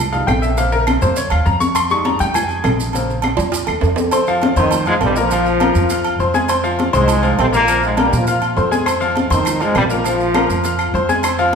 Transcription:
Already playing: upright bass C2
0.12 upright piano G3 G#3 D#4 F5, high conga, low conga, low agogo, maracas
0.27 upright bass A#1, upright piano G5, high conga, low timbale, low agogo, claves, maracas
0.42 upright piano E5, high conga, maracas
0.57 upright piano C#3 A#3 C4 F5, high conga, low agogo, maracas
0.72 upright piano A#4, high conga, maracas
0.87 high conga, low agogo, claves, maracas
1.02 upright bass F2, upright piano C#3 A#3 C4 C5, high conga, maracas
1.16 upright piano C#5, high conga, low agogo, maracas
1.30 upright bass D#2, upright piano F5, high conga, low agogo, claves, maracas
1.46 upright bass F2, upright piano A#5, high conga, maracas
1.60 upright piano C#6, high conga, maracas
1.75 upright piano C6, high conga, low agogo, claves, maracas
1.90 upright piano G3 G#3 D#4 C#6, high conga, maracas
2.05 upright piano A#5, high conga, low agogo, maracas
2.19 upright bass F2, upright piano G5, high conga, low agogo, maracas
2.34 upright piano G#5, high conga, low conga, low agogo, claves, maracas
2.49 high conga, low agogo, maracas
2.64 upright bass A#1, high conga, low timbale, low agogo, claves, maracas
2.79 high conga, maracas
2.93 upright piano C#3 A#3 C4, high conga, low agogo, maracas
3.09 high conga, maracas
3.22 high conga, low agogo, claves, maracas
3.37 upright bass F2, high conga, high timbale, maracas
3.52 high conga, high timbale, low agogo, maracas
3.67 upright bass D#2, high conga, low timbale, low agogo, claves, maracas
3.81 upright bass F2, high conga, low timbale, maracas
3.96 high conga, low timbale, maracas
4.11 upright piano C4 C5 C6, high conga, low agogo, maracas
4.27 upright piano F3 F4 F5, high conga, maracas
4.42 high conga, low agogo, maracas
4.56 upright bass F2, trombone section D#3 D#4, upright piano C4 C5 C6, high conga, low agogo, maracas
4.71 high conga, low conga, low agogo, maracas
4.86 trombone section G#2 G#3, upright piano F3 F4 F5, high conga, low conga, low agogo, maracas
5.01 upright bass A#1, trombone section G2 G3, high conga, low timbale, low agogo, maracas
5.16 trombone section F3 F4, upright piano A#3 A#4 A#5, maracas
5.31 upright piano F3 F4 F5, high conga, low agogo, maracas
5.46 high conga, maracas
5.60 upright piano A#3 A#4 A#5, high conga, low agogo, maracas
5.75 upright bass F2, high conga, maracas
5.90 upright piano F4 F5 F6, high conga, low agogo, maracas
6.04 high conga, low agogo, maracas
6.19 upright bass F2, upright piano C4 C5 C6, high conga, maracas
6.34 upright piano G#3 G#4 G#5, high conga, maracas
6.48 upright piano C4 C5 C6, low agogo, maracas
6.63 upright piano F3 F4 F5, high conga, maracas
6.79 high conga, low agogo, maracas
6.93 upright bass C2, trombone section G#2 G#3, upright piano C4 C5 C6, low agogo, maracas
7.08 high conga, low conga, low agogo, maracas
7.22 upright piano F3 F4 F5, high conga, low agogo, maracas
7.39 upright bass A#1, trombone section C3 C4, high conga, low timbale, low agogo, maracas
7.52 trombone section A#2 A#3, upright piano A#3 A#4 A#5, high conga, maracas
7.68 upright piano F3 F4 F5, high conga, low agogo, maracas
7.83 trombone section G#2 G#3, high conga, maracas
7.97 trombone section G2 G3, upright piano A#3 A#4 A#5, high conga, low agogo, maracas
8.13 upright bass A#2, trombone section F3 F4, high conga, maracas
8.27 trombone section F3 F4, upright piano F4 F5 F6, high conga, low agogo, maracas
8.42 high conga, low agogo, maracas
8.57 upright bass F2, upright piano C4 C5 C6, high conga, low timbale, maracas
8.71 upright piano G#3 G#4 G#5, high conga, maracas
8.86 upright piano C4 C5 C6, low agogo, claves, maracas
9.00 upright piano F3 F4 F5, high conga, maracas
9.15 high conga, low agogo, maracas
9.30 upright bass F2, trombone section D#3 D#4, upright piano C4 C5 C6, high conga, low agogo, maracas
9.45 high conga, low conga, low agogo, claves, maracas
9.60 trombone section G#2 G#3, upright piano F3 F4 F5, high conga, low conga, low agogo, maracas
9.75 upright bass A#1, trombone section G2 G3, high conga, low timbale, low agogo, claves, maracas
9.90 trombone section F3 F4, upright piano A#3 A#4 A#5, high conga, maracas
10.04 upright piano F3 F4 F5, high conga, low agogo, maracas
10.20 high conga, maracas
10.34 upright piano A#3 A#4 A#5, high conga, low agogo, claves, maracas
10.50 upright bass F2, high conga, maracas
10.64 upright piano F4 F5 F6, high conga, low agogo, maracas
10.79 high conga, low agogo, claves, maracas
10.94 upright bass F2, upright piano C4 C5 C6, high conga, maracas
11.09 upright piano G#3 G#4 G#5, high conga, maracas
11.23 upright piano C4 C5 C6, high conga, low agogo, claves, maracas
11.38 upright piano F3 F4 F5, high conga, maracas

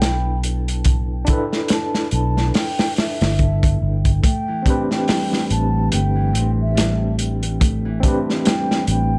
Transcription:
Already playing: fingered electric bass B1, tine electric piano D4 E4 A4 B4, flute G5
0.02 snare, closed hi-hat
0.43 closed hi-hat
0.68 closed hi-hat
0.84 kick, closed hi-hat
1.25 tine electric piano D4 E4, kick, closed hi-hat
1.30 tine electric piano A4 B4
1.53 snare
1.68 flute A5, snare, closed hi-hat
1.95 snare
2.11 fingered electric bass B1, flute A5, closed hi-hat
2.37 snare
2.54 flute G5, snare, open hi-hat
2.79 snare, open hi-hat
2.96 flute E5, snare, open hi-hat
3.21 fingered electric bass G1, snare, open hi-hat
3.39 kick, closed hi-hat
3.63 kick, closed hi-hat
3.82 fingered electric bass G1
4.05 kick, closed hi-hat
4.23 harp A3, flute G5, kick, closed hi-hat
4.48 harp E3
4.62 tine electric piano C4 D4, harp C4, kick, closed hi-hat
4.67 tine electric piano G4 B4
4.91 flute G5, snare
5.07 harp G3, snare, open hi-hat
5.33 snare
5.50 fingered electric bass A1, flute A5, closed hi-hat
5.92 fingered electric bass G1, harp A3, flute G5, closed hi-hat
6.16 harp E3
6.33 fingered electric bass A1, harp C4, closed hi-hat
6.61 flute E5
6.75 harp G3, snare, closed hi-hat
7.19 closed hi-hat
7.43 closed hi-hat
7.60 harp A3, kick, closed hi-hat
7.85 harp E3
8.00 tine electric piano C4 D4, harp C4, kick, closed hi-hat
8.05 tine electric piano G4 B4
8.30 snare
8.45 harp G3, flute G5, snare, closed hi-hat
8.71 snare
8.87 fingered electric bass A1, flute G5, closed hi-hat

